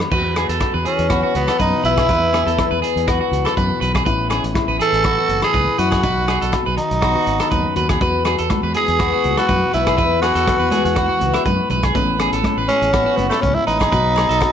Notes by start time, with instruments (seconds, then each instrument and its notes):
Already playing: nylon-string guitar D#3
0.00 cross-stick, low agogo
0.11 fingered electric bass E2, nylon-string guitar E2 B3 F#4, clean electric guitar B4, kick, crash
0.36 nylon-string guitar F#4, clean electric guitar G#4, cross-stick, closed hi-hat, low agogo
0.49 fingered electric bass E2, clean electric guitar A4, closed hi-hat
0.60 nylon-string guitar F#4, kick, cross-stick, closed hi-hat, low agogo
0.74 fingered electric bass E2, clean electric guitar B4
0.85 nylon-string guitar E3, tenor saxophone C#4, clean electric guitar G#4, closed hi-hat
0.99 fingered electric bass E2, closed hi-hat
1.10 nylon-string guitar B3, clean electric guitar F#4, kick, cross-stick, closed hi-hat, low agogo
1.23 clean electric guitar F#4
1.35 fingered electric bass C#2, tenor saxophone B3, nylon-string guitar F#4, closed hi-hat
1.48 clean electric guitar A4, cross-stick, closed hi-hat, low agogo
1.59 fingered electric bass F#2, nylon-string guitar B2, tenor saxophone D#4, clean electric guitar B4, kick, closed hi-hat
1.84 fingered electric bass B1, nylon-string guitar B3, tenor saxophone E4, clean electric guitar B4, closed hi-hat
1.97 clean electric guitar G#4, kick, cross-stick, closed hi-hat, low agogo
2.08 nylon-string guitar E2, fingered electric bass E2, clean electric guitar B4, kick, closed hi-hat
2.33 nylon-string guitar B3, clean electric guitar G#4, cross-stick, closed hi-hat, low agogo
2.47 fingered electric bass E2, clean electric guitar A4, closed hi-hat
2.57 nylon-string guitar B3, kick, cross-stick, closed hi-hat, low agogo
2.71 fingered electric bass E2, clean electric guitar B4
2.81 nylon-string guitar E3, clean electric guitar G#4, closed hi-hat
2.96 fingered electric bass E2, closed hi-hat
3.07 nylon-string guitar B3, clean electric guitar F#4, kick, cross-stick, closed hi-hat, low agogo
3.21 clean electric guitar F#4
3.31 fingered electric bass C#2, nylon-string guitar F#4, closed hi-hat
3.45 clean electric guitar A4, cross-stick, closed hi-hat, low agogo
3.57 fingered electric bass F#2, nylon-string guitar B2, clean electric guitar B4, kick, closed hi-hat
3.81 fingered electric bass B1, nylon-string guitar F#4, clean electric guitar B4, closed hi-hat
3.95 clean electric guitar G#4, kick, cross-stick, closed hi-hat, low agogo
4.05 fingered electric bass A1, nylon-string guitar A2 B3 C#4 E4, clean electric guitar B4, kick, closed hi-hat
4.30 nylon-string guitar C#4, clean electric guitar G#4, cross-stick, closed hi-hat, low agogo
4.44 fingered electric bass A1, closed hi-hat
4.54 nylon-string guitar E4, kick, cross-stick, closed hi-hat, low agogo
4.68 fingered electric bass A1, clean electric guitar B4
4.78 nylon-string guitar E3, clean electric guitar G#4, tenor saxophone A4, closed hi-hat
4.93 fingered electric bass A1, closed hi-hat
5.04 nylon-string guitar B3, clean electric guitar F#4, kick, cross-stick, closed hi-hat, low agogo
5.18 clean electric guitar F#4
5.28 fingered electric bass F#1, muted nylon-string guitar stroke, closed hi-hat
5.42 tenor saxophone G#4, clean electric guitar A4, cross-stick, closed hi-hat, low agogo
5.53 fingered electric bass C#2, nylon-string guitar E2, clean electric guitar B4, kick, closed hi-hat
5.78 fingered electric bass F#2, nylon-string guitar E4, tenor saxophone F#4, clean electric guitar B4, closed hi-hat
5.91 clean electric guitar G#4, kick, cross-stick, closed hi-hat, low agogo
6.03 fingered electric bass B1, nylon-string guitar B2 D#4, clean electric guitar B4, muted nylon-string guitar stroke, kick, closed hi-hat
6.28 nylon-string guitar D#4, clean electric guitar G#4, cross-stick, closed hi-hat, low agogo
6.41 fingered electric bass B1, clean electric guitar A4, closed hi-hat
6.52 nylon-string guitar F#4, kick, cross-stick, closed hi-hat, low agogo
6.66 fingered electric bass B1, clean electric guitar B4
6.76 nylon-string guitar D#3, tenor saxophone D#4, muted clean electric guitar stroke, closed hi-hat
6.91 fingered electric bass B1, closed hi-hat
7.02 nylon-string guitar B3, clean electric guitar F#4, kick, cross-stick, closed hi-hat, low agogo
7.15 clean electric guitar F#4
7.27 fingered electric bass G#1, nylon-string guitar D#4, closed hi-hat
7.40 clean electric guitar A4, cross-stick, closed hi-hat, low agogo
7.51 fingered electric bass D#2, nylon-string guitar F#2, clean electric guitar B4, kick, closed hi-hat
7.76 fingered electric bass D#2, nylon-string guitar F#4, clean electric guitar B4, closed hi-hat
7.89 clean electric guitar G#4, kick, cross-stick, closed hi-hat, low agogo
8.00 nylon-string guitar E2 B3 F#4, fingered electric bass E2, clean electric guitar B4, kick, closed hi-hat, muted conga
8.25 nylon-string guitar F#4, clean electric guitar G#4, cross-stick, closed hi-hat, low agogo
8.38 fingered electric bass E2, clean electric guitar A4, closed hi-hat
8.50 nylon-string guitar F#4, kick, cross-stick, closed hi-hat, muted conga, high conga, low agogo
8.63 fingered electric bass E2, clean electric guitar B4
8.74 nylon-string guitar E3, clean electric guitar G#4, tenor saxophone G#4, closed hi-hat
8.88 fingered electric bass E2, closed hi-hat
8.99 nylon-string guitar B3, clean electric guitar F#4, kick, cross-stick, closed hi-hat, muted conga, low agogo
9.13 clean electric guitar F#4
9.24 fingered electric bass C#2, nylon-string guitar F#4, closed hi-hat, muted conga, high conga
9.37 tenor saxophone F#4, clean electric guitar A4, cross-stick, closed hi-hat, low agogo
9.48 fingered electric bass F#2, nylon-string guitar B2, clean electric guitar B4, kick, closed hi-hat, high conga
9.73 fingered electric bass B1, nylon-string guitar B3, tenor saxophone E4, clean electric guitar B4, closed hi-hat
9.86 clean electric guitar G#4, kick, cross-stick, closed hi-hat, low agogo
9.97 nylon-string guitar E2 B3, fingered electric bass E2, clean electric guitar B4, kick, closed hi-hat, muted conga
10.22 nylon-string guitar B3, tenor saxophone F#4, clean electric guitar G#4, cross-stick, closed hi-hat, low agogo
10.35 fingered electric bass E2, clean electric guitar A4, closed hi-hat
10.47 nylon-string guitar B3, kick, cross-stick, closed hi-hat, muted conga, low agogo
10.59 fingered electric bass E2, clean electric guitar B4
10.71 nylon-string guitar E3, clean electric guitar G#4, closed hi-hat, high conga
10.85 fingered electric bass E2, tenor saxophone F#4, closed hi-hat
10.96 clean electric guitar F#4, muted nylon-string guitar stroke, kick, cross-stick, closed hi-hat, low agogo
11.09 clean electric guitar F#4
11.20 fingered electric bass C#2, nylon-string guitar B3, closed hi-hat, muted conga, low conga
11.34 clean electric guitar E5, cross-stick, closed hi-hat, low agogo
11.44 nylon-string guitar F#2, fingered electric bass F#2, clean electric guitar B4, kick, closed hi-hat, high conga
11.69 fingered electric bass B1, nylon-string guitar G#2, clean electric guitar B4, closed hi-hat, high conga, low conga
11.83 clean electric guitar G#4, kick, cross-stick, closed hi-hat, low agogo
11.93 fingered electric bass A1, nylon-string guitar A2 B3 C#4, clean electric guitar B4, kick, closed hi-hat, muted conga
12.19 nylon-string guitar C#4, clean electric guitar G#4, cross-stick, closed hi-hat, low agogo
12.33 fingered electric bass A1, clean electric guitar A4, closed hi-hat
12.43 nylon-string guitar C#4, kick, cross-stick, closed hi-hat, muted conga, high conga, low agogo
12.57 fingered electric bass A1, clean electric guitar B4
12.68 tenor saxophone C#4, clean electric guitar G#4, muted nylon-string guitar stroke, closed hi-hat
12.82 fingered electric bass A1, closed hi-hat
12.93 nylon-string guitar B3, clean electric guitar F#4, kick, cross-stick, closed hi-hat, muted conga, low agogo
13.06 clean electric guitar F#4
13.16 fingered electric bass F#1, tenor saxophone B3, nylon-string guitar C#4, closed hi-hat, muted conga, high conga
13.29 tenor saxophone A3, clean electric guitar A4, cross-stick, closed hi-hat, low agogo
13.41 fingered electric bass C#2, nylon-string guitar G#2, tenor saxophone C#4, muted clean electric guitar stroke, kick, closed hi-hat, high conga
13.54 tenor saxophone E4
13.67 fingered electric bass A1, nylon-string guitar A2, tenor saxophone D#4, clean electric guitar B4, closed hi-hat
13.80 clean electric guitar G#4, kick, cross-stick, closed hi-hat, low agogo
13.91 fingered electric bass B1, nylon-string guitar B2 B3 D#4 F#4, clean electric guitar B4, kick, closed hi-hat, muted conga
14.16 nylon-string guitar D#4, clean electric guitar G#4, cross-stick, closed hi-hat, low agogo
14.29 fingered electric bass B1, clean electric guitar A4, closed hi-hat
14.41 nylon-string guitar F#4, kick, cross-stick, closed hi-hat, muted conga, low agogo